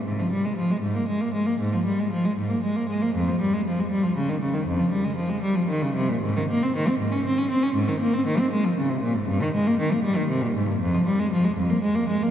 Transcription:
\new Staff \with { instrumentName = "Cello" } { \clef bass \time 12/8 \key f \minor \tempo 4. = 78 aes,16 f16 g16 aes16 f16 aes16 aes,16 bes16 aes16 bes16 aes16 bes16 aes,16 f16 g16 aes16 f16 aes16 aes,16 bes16 aes16 bes16 aes16 bes16 | f,16 f16 g16 aes16 f16 aes16 g16 f16 des16 ees16 des16 ees16 f,16 f16 g16 aes16 f16 aes16 g16 f16 ees16 des16 c16 bes,16 | \key aes \major aes,16 ees16 bes16 c'16 ees16 c'16 aes,16 des'16 c'16 des'16 c'16 des'16 aes,16 ees16 bes16 c'16 ees16 c'16 aes16 f16 des16 c16 bes,16 aes,16 | g,16 ees16 aes16 bes16 ees16 bes16 g16 ees16 c16 bes,16 aes,16 g,16 f,16 f16 g16 aes16 f16 aes16 f,16 bes16 aes16 bes16 aes16 bes16 | }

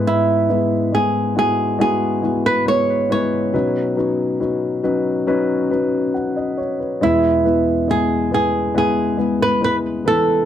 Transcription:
<<
  \new Staff \with { instrumentName = "Nylon-string guitar" } { \time 4/4 \key e \major \tempo 4 = 69 e'4 gis'8 gis'8 gis'8. b'16 cis''8 cis''8~ | cis''8 r2. r8 | e'4 gis'8 gis'8 gis'8. b'16 b'8 a'8 | }
  \new Staff \with { instrumentName = "Grand piano" } { \time 4/4 \key e \major << { r1 | r2. fis''16 dis''16 cis''16 b'16~ | b'16 r2. r8. | } \\ { <gis b e' b'>8 <gis b e' b'>8 <gis b e' gis'>8 <gis b e' fis'>8 <gis b e' fis'>8 <gis b e' fis'>8 <gis b e' b'>8 <gis b e' b'>8 | <fis cis' dis' b'>8 <fis cis' dis' b'>8 <fis cis' dis' b'>8 <fis cis' dis' b'>8 <fis cis' dis' b'>8 <fis cis' dis' b'>8 r4 | <gis b e' b'>8 <gis b e' b'>8 <gis b e' b'>8 <gis b e' b'>8 <gis b e' b'>8 <gis b e' b'>8 <gis b e' b'>8 <e b e' b'>8 | } >> }
  \new Staff \with { instrumentName = "Grand piano" } { \clef bass \time 4/4 \key e \major gis,2.~ gis,8 r8 | b,1 | <e, b,>1 | }
>>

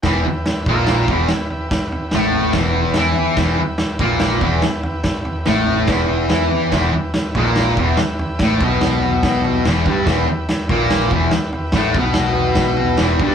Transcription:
<<
  \new Staff \with { instrumentName = "Transistor combo organ" } { \time 4/4 \key e \minor \tempo 4 = 144 <g' b' e''>8 <g' b' e''>8 <g' b' e''>8 <g' b' e''>8 <g' b' e''>8 <g' b' e''>8 <g' b' e''>8 <g' b' e''>8 | <g' b' e''>8 <g' b' e''>8 <g' b' e''>8 <g' b' e''>8 <g' b' e''>8 <g' b' e''>8 <g' b' e''>8 <g' b' e''>8 | <g' b' e''>8 <g' b' e''>8 <g' b' e''>8 <g' b' e''>8 <g' b' e''>8 <g' b' e''>8 <g' b' e''>8 <g' b' e''>8 | <g' b' e''>8 <g' b' e''>8 <g' b' e''>8 <g' b' e''>8 <g' b' e''>8 <g' b' e''>8 <g' b' e''>8 <g' b' d''>8 |
<g' b' fis''>8 <g' b' e''>8 <g' b' e''>8 <g' b' e''>8 <g' b' e''>8 <g' b' e''>8 <g' b' e''>8 <g' b' e''>8 | <g' b' e''>8 <g' b' e''>8 <g' b' d''>8 <g' b' e''>8 <g' b' e''>8 <g' b' e''>8 <g' b' fis''>8 <g' b' e''>8 | <g' b' e''>8 <g' b' e''>8 <g' b' e''>8 <g' b' e''>8 <g' b' e''>8 <g' b' e''>8 <g' b' e''>8 <g' b' e''>8 | <g' b' fis''>8 <g' b' fis''>8 <g' b' e''>8 <g' b' e''>8 <g' b' e''>8 <g' b' e''>8 <g' b' e''>8 <g' b' e''>8 | }
  \new Staff \with { instrumentName = "Distorted electric guitar" } { \clef bass \time 4/4 \key e \minor <e, e>8 r4 <ais, ais>4 <e, e>8 r4 | r4 <a, a>4 <e, e>4 <e e'>4 | <e, e>8 r4 <ais, ais>4 <e, e>8 r4 | r4 <a, a>4 <e, e>4 <e e'>4 |
<e, e>8 r4 <ais, ais>4 <e, e>8 r4 | <a, a>8 <b, b>2~ <b, b>8 <e, e>8 <g, g>8 | <e, e>8 r4 <ais, ais>4 <e, e>8 r4 | <a, a>8 <b, b>2~ <b, b>8 <e, e>8 <g, g>8 | }
  \new Staff \with { instrumentName = "Picked electric bass" } { \clef bass \time 4/4 \key e \minor e,,8 r4 ais,,4 e,,8 r4 | r4 a,,4 e,,4 e,4 | e,,8 r4 ais,,4 e,,8 r4 | r4 a,,4 e,,4 e,4 |
e,,8 r4 ais,,4 e,,8 r4 | a,,8 b,,2~ b,,8 e,,8 g,,8 | e,,8 r4 ais,,4 e,,8 r4 | a,,8 b,,2~ b,,8 e,,8 g,,8 | }
  \new DrumStaff \with { instrumentName = "Drums" } \drummode { \time 4/4 <bd sn tomfh>8 tomfh8 <sn tomfh>8 <bd tomfh>8 <sn tomfh>8 <bd tomfh>8 <sn tomfh>8 tomfh8 | <bd sn tomfh>8 tomfh8 <sn tomfh>8 tomfh8 <bd sn tomfh>8 tomfh8 <sn tomfh>8 tomfh8 | <bd sn tomfh>8 tomfh8 <sn tomfh>8 <bd tomfh>8 <sn tomfh>8 <bd tomfh>8 <sn tomfh>8 tomfh8 | <bd sn tomfh>8 tomfh8 <sn tomfh>8 tomfh8 <bd sn tomfh>8 tomfh8 <sn tomfh>8 tomfh8 |
<bd sn tomfh>8 tomfh8 <sn tomfh>8 <bd tomfh>8 <sn tomfh>8 <bd tomfh>8 <sn tomfh>8 tomfh8 | <bd sn tomfh>8 <bd tomfh>8 <sn tomfh>8 tomfh8 <bd sn tomfh>8 tomfh8 <sn tomfh>8 <bd tomfh>8 | <bd sn tomfh>8 tomfh8 <sn tomfh>8 <bd tomfh>8 <sn tomfh>8 <bd tomfh>8 <sn tomfh>8 tomfh8 | <bd sn tomfh>8 <bd tomfh>8 <sn tomfh>8 tomfh8 <bd sn tomfh>8 tomfh8 <sn tomfh>8 <bd tomfh>8 | }
>>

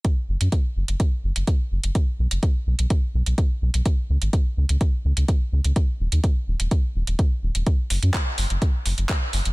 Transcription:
<<
  \new Staff \with { instrumentName = "Analog synth bass" } { \clef bass \time 4/4 \key des \mixolydian \tempo 4 = 126 r8 ges,,16 ges,16 r8 ges,,16 ges,,16 r8 ges,,16 ges,,16 r8 ges,,16 ges,,16 | r8 b,,16 fis,,16 r8 b,,16 b,,16 r8 b,,16 b,,16 r8 b,,16 b,,16 | r8 des,16 aes,,16 r8 des,16 des,16 r8 des,16 des,16 r8 des,16 des,16 | r8 ees,,16 ees,16 r8 ees,,16 ees,,16 r8 ees,,16 ees,,16 r8 ees,,16 ees,,16 |
r8 ges,,16 ges,16 r8 ges,,16 ges,,16 r8 ges,,16 ges,,16 r8 ges,,16 ges,,16 | }
  \new DrumStaff \with { instrumentName = "Drums" } \drummode { \time 4/4 <hh bd>8. hh16 <hh bd>8. hh16 <hh bd>8. hh16 <hh bd>8. hh16 | <hh bd>8. hh16 <hh bd>8. hh16 <hh bd>8. hh16 <hh bd>8. hh16 | <hh bd>8. hh16 <hh bd>8. hh16 <hh bd>8. hh16 <hh bd>8. hh16 | <hh bd>8. hh16 <hh bd>8. hh16 <hh bd>8. hh16 <hh bd>8. hh16 |
<hh bd>8 hho16 hh16 <hc hh bd>8 hho16 hh16 <hh bd>8 hho16 hh16 <hc hh bd>8 hho16 hh16 | }
>>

